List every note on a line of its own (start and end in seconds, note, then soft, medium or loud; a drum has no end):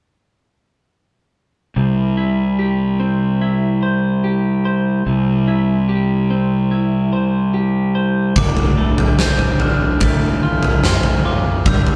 1.76 5.03 C2 soft
1.76 3.83 C3 soft
2.17 3.40 E4 soft
2.59 4.23 G4 soft
3.00 6.30 C4 soft
3.42 5.47 E4 soft
3.83 4.65 C5 medium
4.24 5.88 G4 soft
4.65 7.12 C5 soft
5.06 8.33 C2 medium
5.06 7.13 C3 soft
5.48 6.70 E4 soft
5.89 7.53 G4 soft
6.30 8.37 C4 soft
6.71 8.37 E4 soft
7.13 7.94 C5 medium
7.54 8.37 G4 soft
7.95 8.37 C5 medium
8.36 11.62 D1 medium
8.36 10.43 D2 medium
8.36 9.19 D6 medium
8.36 kick medium
8.36 floor tom medium
8.57 floor tom medium
8.77 10.01 A3 soft
8.98 floor tom medium
9.19 10.83 C4 medium
9.19 9.61 G6 medium
9.19 snare medium
9.19 floor tom medium
9.39 floor tom medium
9.60 11.67 D3 medium
9.60 10.42 F6 medium
9.60 floor tom medium
10.00 11.67 A3 medium
10.00 kick medium
10.00 floor tom medium
10.43 11.25 F4 medium
10.43 10.84 F6 soft
10.63 floor tom medium
10.84 11.66 C4 soft
10.84 11.26 C6 medium
10.84 snare medium
10.84 mid tom medium
11.03 floor tom medium
11.25 11.69 F4 soft
11.25 11.67 D6 soft
11.66 11.96 D1 medium
11.66 11.96 G2 medium
11.66 11.96 E6 medium
11.66 kick medium
11.66 floor tom medium
11.87 floor tom medium